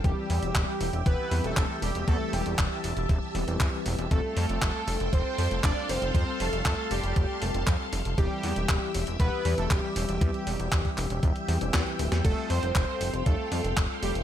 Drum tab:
CC |----------------|----------------|----------------|----------------|
HH |x-oxx-oxx-oxx-ox|x-oxx-oxx-oxx-ox|x-oxx-oxx-oxx-ox|x-oxx-oxx-oxx-ox|
CP |----x-------x---|----x-------x---|----x-------x---|----x-------x---|
SD |----------------|----------------|----------------|----------------|
BD |o---o---o---o---|o---o---o---o---|o---o---o---o---|o---o---o---o---|

CC |----------------|----------------|x---------------|
HH |x-oxx-oxx-oxx-ox|xxoxxxoxxxoxxxox|x-oxx-oxx-oxx-ox|
CP |----x-------x---|----x-x-----x---|----x-------x---|
SD |----------------|------------o--o|----------------|
BD |o---o---o---o---|o---oo--o---o---|o---o---o---o---|